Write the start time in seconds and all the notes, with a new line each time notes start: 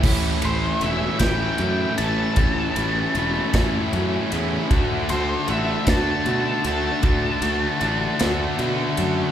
0.03 A1 A2 E3 A3 C#4 E4 A4 E5 B5, kick, crash
0.42 A1 A3 C#4 E4 C5, ride
0.81 E1 E3 A3 C#4 E4 E5, ride
1.19 A1 A3 C#4 E4 G5, kick, snare, ride
1.23 A2 E3
1.58 F#2 E3 A3 C#4, ride
1.63 E4
1.98 A1 A3 C#4 E4 A5, ride
2.36 A1 A2 E3 A3 C#4 E4 F#5, kick, ride
2.75 A1 A3 C#4 E4, ride
3.15 E1 E3 A3 C#4 E4, ride
3.54 A1 A2 E3 A3 C#4 E4, kick, snare, ride
3.93 F#2 E3 A3 C#4 E4, ride
4.31 E2 A3 C#4 E4, ride
4.71 D2 D3 A3 D4 F#4 D5 A5, kick, ride
5.09 D2 A3 D4 F#4 C5, ride
5.48 A1 D3 A3 D4 F#4 E5, ride
5.86 D2 D3 A3 D4 F#4 A5, kick, snare, ride
6.24 B2 D3 A3 D4 F#4, ride
6.64 D2 A3 D4 F#4 A5, ride
7.02 D2 D3 A3 D4 F#4, kick, ride
7.42 D2 A3 D4 F#4, ride
7.80 A1 D3 A3 D4 F#4, ride
8.19 D2 D3 A3 D4 F#4, snare, ride
8.58 B2 D3 A3 D4 F#4, ride
8.97 F#2 A3 D4 F#4, ride